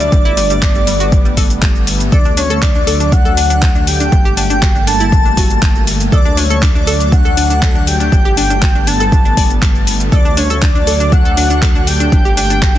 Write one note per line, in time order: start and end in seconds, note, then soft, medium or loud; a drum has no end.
0.00 0.10 F#3 medium
0.00 0.07 G3 medium
0.00 0.10 D4 medium
0.00 1.87 D5 loud
0.00 closed hi-hat medium
0.00 shaker soft
0.12 2.10 G1 medium
0.12 2.10 G3 medium
0.12 0.20 G3 medium
0.12 10.08 A3 medium
0.12 2.10 B3 medium
0.12 kick loud
0.12 closed hi-hat medium
0.12 shaker soft
0.25 0.32 E4 loud
0.25 closed hi-hat soft
0.25 shaker soft
0.37 0.45 G3 medium
0.37 open hi-hat loud
0.37 shaker medium
0.50 0.57 G3 medium
0.50 closed hi-hat medium
0.50 shaker soft
0.62 0.70 D4 loud
0.62 kick loud
0.62 clap loud
0.62 closed hi-hat medium
0.62 shaker soft
0.75 0.82 G3 medium
0.75 closed hi-hat soft
0.75 shaker soft
0.87 0.95 G3 medium
0.87 open hi-hat loud
0.87 shaker medium
1.00 1.07 F#4 loud
1.00 closed hi-hat medium
1.00 shaker soft
1.12 1.20 G3 medium
1.12 kick loud
1.12 closed hi-hat medium
1.12 shaker soft
1.25 1.32 G3 medium
1.25 closed hi-hat soft
1.25 shaker soft
1.37 2.03 A4 medium
1.37 kick medium
1.37 open hi-hat loud
1.37 shaker medium
1.50 closed hi-hat medium
1.50 shaker soft
1.62 kick loud
1.62 clap loud
1.62 closed hi-hat medium
1.62 shaker soft
1.75 closed hi-hat soft
1.75 shaker soft
1.87 open hi-hat loud
1.87 shaker medium
2.00 closed hi-hat medium
2.00 shaker soft
2.12 4.10 D2 medium
2.12 4.10 F#3 medium
2.12 4.10 D4 medium
2.12 2.20 A4 loud
2.12 2.35 D5 medium
2.12 2.36 D5 medium
2.12 kick loud
2.12 closed hi-hat medium
2.12 shaker soft
2.25 2.32 D4 medium
2.25 closed hi-hat soft
2.25 shaker soft
2.37 2.45 D4 medium
2.37 2.64 C#5 medium
2.37 open hi-hat loud
2.37 shaker medium
2.50 2.57 A4 medium
2.50 closed hi-hat medium
2.50 shaker soft
2.62 2.70 D4 medium
2.62 3.14 D5 medium
2.62 kick loud
2.62 clap loud
2.62 closed hi-hat medium
2.62 shaker soft
2.75 2.82 D4 medium
2.75 closed hi-hat soft
2.75 shaker soft
2.87 2.95 A4 medium
2.87 open hi-hat loud
2.87 shaker medium
3.00 3.07 D4 medium
3.00 closed hi-hat medium
3.00 shaker soft
3.12 3.20 D4 medium
3.12 3.87 F#5 loud
3.12 kick loud
3.12 closed hi-hat medium
3.12 shaker soft
3.25 3.32 A4 medium
3.25 closed hi-hat soft
3.25 shaker soft
3.37 3.45 D4 medium
3.37 open hi-hat loud
3.37 shaker medium
3.50 3.57 D4 medium
3.50 closed hi-hat medium
3.50 shaker soft
3.62 3.70 A4 medium
3.62 kick loud
3.62 clap loud
3.62 closed hi-hat medium
3.62 shaker soft
3.75 3.82 D4 medium
3.75 closed hi-hat soft
3.75 shaker soft
3.87 4.34 G5 loud
3.87 open hi-hat loud
3.87 shaker medium
4.00 4.07 D4 medium
4.00 closed hi-hat medium
4.00 shaker soft
4.12 6.10 G1 medium
4.12 6.10 G3 medium
4.12 6.10 A#3 medium
4.12 4.20 D4 medium
4.12 kick loud
4.12 closed hi-hat medium
4.12 shaker soft
4.25 4.32 G4 medium
4.25 closed hi-hat soft
4.25 shaker soft
4.37 4.45 D4 medium
4.37 4.84 G5 loud
4.37 open hi-hat loud
4.37 shaker medium
4.50 4.57 D4 medium
4.50 closed hi-hat medium
4.50 shaker soft
4.62 4.70 F#4 medium
4.62 kick loud
4.62 clap loud
4.62 closed hi-hat medium
4.62 shaker soft
4.75 4.82 D4 medium
4.75 closed hi-hat soft
4.75 shaker soft
4.87 4.95 D4 medium
4.87 5.83 A5 loud
4.87 open hi-hat loud
4.87 shaker medium
5.00 5.07 E4 loud
5.00 closed hi-hat medium
5.00 shaker soft
5.12 5.20 D4 medium
5.12 kick loud
5.12 closed hi-hat medium
5.12 shaker soft
5.25 5.32 D4 medium
5.25 closed hi-hat soft
5.25 shaker soft
5.37 6.03 F#4 medium
5.37 kick medium
5.37 open hi-hat loud
5.37 shaker medium
5.50 closed hi-hat medium
5.50 shaker soft
5.62 kick loud
5.62 clap loud
5.62 closed hi-hat medium
5.62 shaker soft
5.75 closed hi-hat soft
5.75 shaker soft
5.87 open hi-hat loud
5.87 shaker medium
6.00 closed hi-hat medium
6.00 shaker soft
6.12 8.10 D2 medium
6.12 8.10 F#3 medium
6.12 8.10 D4 medium
6.12 6.20 A4 loud
6.12 6.39 D5 medium
6.12 kick loud
6.12 closed hi-hat medium
6.12 shaker soft
6.25 6.32 D4 medium
6.25 closed hi-hat soft
6.25 shaker soft
6.37 6.45 D4 medium
6.37 6.64 C#5 medium
6.37 open hi-hat loud
6.37 shaker medium
6.50 6.57 A4 medium
6.50 closed hi-hat medium
6.50 shaker soft
6.62 6.70 D4 medium
6.62 7.14 D5 medium
6.62 kick loud
6.62 clap loud
6.62 closed hi-hat medium
6.62 shaker soft
6.75 6.82 D4 medium
6.75 closed hi-hat soft
6.75 shaker soft
6.87 6.95 A4 loud
6.87 open hi-hat loud
6.87 shaker medium
7.00 7.07 D4 medium
7.00 closed hi-hat medium
7.00 shaker soft
7.12 7.20 D4 medium
7.12 7.89 F#5 loud
7.12 7.88 F#5 loud
7.12 kick loud
7.12 closed hi-hat medium
7.12 shaker soft
7.25 7.32 A4 medium
7.25 closed hi-hat soft
7.25 shaker soft
7.37 7.45 D4 medium
7.37 open hi-hat loud
7.37 shaker medium
7.50 7.57 D4 medium
7.50 closed hi-hat medium
7.50 shaker soft
7.62 7.70 A4 medium
7.62 kick loud
7.62 clap loud
7.62 closed hi-hat medium
7.62 shaker soft
7.75 7.82 D4 medium
7.75 closed hi-hat soft
7.75 shaker soft
7.87 8.36 G5 loud
7.87 open hi-hat loud
7.87 shaker medium
8.00 8.07 D4 medium
8.00 closed hi-hat medium
8.00 shaker soft
8.12 10.10 G1 medium
8.12 10.10 G3 medium
8.12 10.10 B3 medium
8.12 8.20 D4 medium
8.12 kick loud
8.12 closed hi-hat medium
8.12 shaker soft
8.25 8.32 G4 medium
8.25 closed hi-hat soft
8.25 shaker soft
8.37 8.45 D4 medium
8.37 8.89 G5 loud
8.37 open hi-hat loud
8.37 shaker medium
8.50 8.57 D4 medium
8.50 closed hi-hat soft
8.50 shaker soft
8.62 8.70 F#4 loud
8.62 kick loud
8.62 clap loud
8.62 closed hi-hat soft
8.62 shaker soft
8.75 8.82 D4 medium
8.75 closed hi-hat soft
8.75 shaker soft
8.87 8.95 D4 medium
8.87 9.87 A5 loud
8.87 open hi-hat loud
8.87 shaker medium
9.00 9.07 A4 medium
9.00 closed hi-hat soft
9.00 shaker soft
9.12 9.20 D4 medium
9.12 kick loud
9.12 closed hi-hat soft
9.12 shaker soft
9.25 9.32 D4 medium
9.25 closed hi-hat soft
9.25 shaker soft
9.37 10.03 D5 medium
9.37 kick medium
9.37 open hi-hat loud
9.37 shaker medium
9.50 closed hi-hat medium
9.50 shaker soft
9.62 kick loud
9.62 clap loud
9.62 closed hi-hat medium
9.62 shaker soft
9.75 closed hi-hat soft
9.75 shaker soft
9.87 open hi-hat loud
9.87 shaker medium
10.00 closed hi-hat soft
10.00 shaker soft
10.12 12.10 D2 medium
10.12 12.10 F#3 medium
10.12 12.10 A3 medium
10.12 12.10 D4 medium
10.12 10.20 A4 loud
10.12 10.39 D5 medium
10.12 kick loud
10.12 closed hi-hat soft
10.12 shaker soft
10.25 10.32 D4 medium
10.25 closed hi-hat soft
10.25 shaker soft
10.37 10.45 D4 medium
10.37 10.64 C#5 medium
10.37 open hi-hat loud
10.37 shaker medium
10.50 10.57 A4 medium
10.50 closed hi-hat medium
10.50 shaker soft
10.62 10.70 D4 medium
10.62 11.14 D5 loud
10.62 kick loud
10.62 clap loud
10.62 closed hi-hat medium
10.62 shaker soft
10.75 10.82 D4 medium
10.75 closed hi-hat soft
10.75 shaker soft
10.87 10.95 A4 medium
10.87 open hi-hat loud
10.87 shaker medium
11.00 11.07 D4 medium
11.00 closed hi-hat soft
11.00 shaker soft
11.12 11.20 D4 medium
11.12 11.89 F#5 loud
11.12 kick loud
11.12 closed hi-hat medium
11.12 shaker soft
11.25 11.32 A4 medium
11.25 closed hi-hat soft
11.25 shaker soft
11.37 11.45 D4 medium
11.37 open hi-hat loud
11.37 shaker medium
11.50 11.58 D4 medium
11.50 closed hi-hat medium
11.50 shaker soft
11.62 11.70 A4 medium
11.62 kick loud
11.62 clap loud
11.62 closed hi-hat soft
11.62 shaker soft
11.75 11.82 D4 medium
11.75 closed hi-hat soft
11.75 shaker soft
11.87 12.37 G5 loud
11.87 open hi-hat loud
11.87 shaker medium
12.00 12.07 D4 medium
12.00 closed hi-hat medium
12.00 shaker soft
12.12 12.78 G1 medium
12.12 12.78 G3 medium
12.12 12.78 A3 medium
12.12 12.78 A#3 loud
12.12 12.20 D4 medium
12.12 kick loud
12.12 closed hi-hat medium
12.12 shaker soft
12.25 12.32 G4 medium
12.25 closed hi-hat soft
12.25 shaker soft
12.37 12.45 D4 medium
12.37 12.78 G5 loud
12.37 open hi-hat loud
12.37 shaker medium
12.50 12.57 D4 medium
12.50 closed hi-hat medium
12.50 shaker soft
12.62 12.70 F#4 medium
12.62 kick loud
12.62 clap loud
12.62 closed hi-hat medium
12.62 shaker soft
12.75 12.78 D4 medium
12.75 closed hi-hat soft